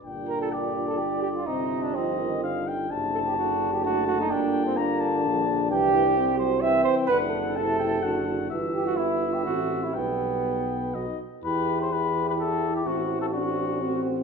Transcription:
<<
  \new Staff \with { instrumentName = "Trumpet" } { \time 3/4 \key g \minor \tempo 4 = 127 g''4 d''2 | ees''4 ees''4 f''8 g''8 | a''2 a''4 | g''4 bes''8 a''4. |
\key e \minor g''4. r8 g''4 | fis''4 a''8 g''8 fis''4 | e''4 e''2 | g''2 dis''8 r8 |
b'8. c''16 b'8. b'16 a'8. g'16 | fis'8. a'16 fis'4. r8 | }
  \new Staff \with { instrumentName = "Flugelhorn" } { \time 3/4 \key g \minor r8 bes'16 a'16 g'8. a'16 g'8 g'16 f'16 | ees'8. d'16 c'4. r8 | r8 a'16 g'16 fis'8. g'16 fis'8 fis'16 ees'16 | d'8. c'16 bes4. r8 |
\key e \minor g'4. c''8 e''8 c''8 | b'8 a'2~ a'8 | r8 g'16 fis'16 e'8. g'16 fis'8. e'16 | b2~ b8 r8 |
g'4 g'2 | fis'4 fis'2 | }
  \new Staff \with { instrumentName = "French horn" } { \time 3/4 \key g \minor d'2. | c'4 ees'4 ees'4 | d'4 d'4 a4 | bes4 d'2~ |
\key e \minor d'4 c'4 c'4 | d'4 e'4 fis'8 fis'8~ | fis'8 r8 e'4 c'4 | b2 dis'8 r8 |
r4 e'2~ | e'4 d'4 c'4 | }
  \new Staff \with { instrumentName = "Euphonium" } { \clef bass \time 3/4 \key g \minor bes,2 d4 | c4 f8 ees8 d4 | c4 d2 | d2. |
\key e \minor e8 e8 g8 fis8 e4 | d4 c4 d4 | e4 b4 a4 | g4. r8 fis8 r8 |
e'4 e'2 | c'4 c'2 | }
  \new Staff \with { instrumentName = "Bass trombone" } { \clef bass \time 3/4 \key g \minor g,,2. | g,,2. | fis,,2. | g,,2 bes,,4 |
\key e \minor c,2~ c,8 r8 | fis,,2. | g,,2 a,,4 | b,,2 b,,8 r8 |
e,2. | a,,2. | }
>>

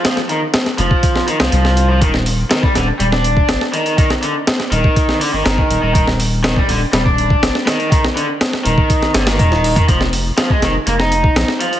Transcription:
<<
  \new Staff \with { instrumentName = "Overdriven electric guitar" } { \clef bass \time 4/4 \key ees \major \tempo 4 = 122 f16 r16 ees16 r8. f4 ees16 f16 f8. f16 | ees16 r8. ees16 g16 d16 r16 g16 d'4 r16 ees8 | ees16 r16 d16 r8. ees4 d16 ees16 ees8. ees16 | ees16 r8. ees16 g16 d16 r16 g16 d'4 r16 ees8 |
ees16 r16 d16 r8. ees4 d16 ees16 ees8. ees16 | f16 r8. f16 aes16 ees16 r16 bes16 ees'4 r16 f8 | }
  \new Staff \with { instrumentName = "Sub bass" } { \clef bass \time 4/4 \key ees \major r4. f,,16 r4 c,16 c,4 | ees,,8. r8. ees,,16 r16 ees,,8. r16 g,,16 r8. | r4. ees,,16 r4 g,,16 g,,16 r16 ees,,16 ees,,16~ | ees,,4~ ees,,16 r16 ees,,16 r16 ees,,8. r16 g,,16 r8. |
r4. ees,,16 r8. g,,8 ees,,8. r16 | f,,8. r8. f,,16 r16 f,,8. r16 bes,,16 r8. | }
  \new DrumStaff \with { instrumentName = "Drums" } \drummode { \time 4/4 <hh sn>16 sn16 hh8 <hh sn>16 sn16 hh16 bd16 <hh bd>16 sn16 hh16 sn16 hh16 sn16 hh8 | <hh bd>16 sn16 hho8 <hh sn>16 bd16 <hh sn>8 hh16 sn16 hh16 bd16 <hh sn>16 sn16 hh16 hh16 | <hh bd>16 sn16 hh8 <hh sn>16 sn16 hh16 bd16 <hh bd>16 sn16 hho8 <hh sn>16 bd16 hh8 | <hh bd>16 sn16 hho8 <hh sn>16 bd16 hho8 <hh sn>16 bd16 hh16 bd16 <hh sn>16 sn16 <hh sn>16 hh16 |
<hh bd>16 sn16 hh8 <hh sn>16 sn16 hh16 bd16 <hh bd>16 sn16 <hh sn>16 <hh sn>16 <hh bd>16 sn16 hho16 <hh bd>16 | <hh bd>16 sn16 hho8 <hh sn>16 bd16 <hh sn>8 hh16 sn16 hh16 bd16 <hh sn>16 sn16 hh16 hh16 | }
>>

